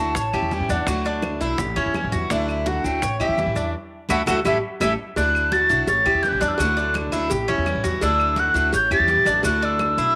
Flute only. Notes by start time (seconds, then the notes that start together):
Already playing: A5
0.19 A5
0.54 G5
0.72 F#5
2.33 E5
2.50 E5
2.68 F#5
2.84 G5
3.20 E5
4.11 F#5
4.28 F#5
4.47 E5
4.82 E5
5.17 F#6
5.53 A6
5.87 A6
6.23 G6
6.28 F#6
6.33 G6
6.40 F#6
6.48 E6
6.55 F#6
8.04 E6
8.39 F#6
8.75 G6
8.93 A6
9.45 F#6
9.65 E6